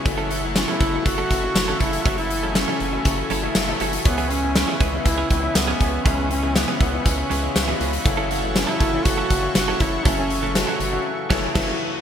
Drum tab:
CC |----------------|----------------|----------------|----------------|
HH |x-x-x-x-x-x-x-xx|xxx-x-x-x-x-x-xx|xxx-x-x-x-x-x-x-|x-x-x-x-x-x-x-xx|
TB |----x-------x---|----x-------x---|----x-------x---|----x-------x---|
SD |----o-------o---|----o-------o---|----o-------o---|----o-------o---|
BD |o-----o-o-o---o-|o-------o-------|o-----o-o-o---o-|o-----o-o-------|

CC |----------------|----------x-x---|
HH |x-x-x-x-x-x-x-x-|x-x-x-x---------|
TB |----x-------x---|----x-----------|
SD |----o-------o---|----o-----o-o---|
BD |o-----o-o-o---o-|o---------o-o---|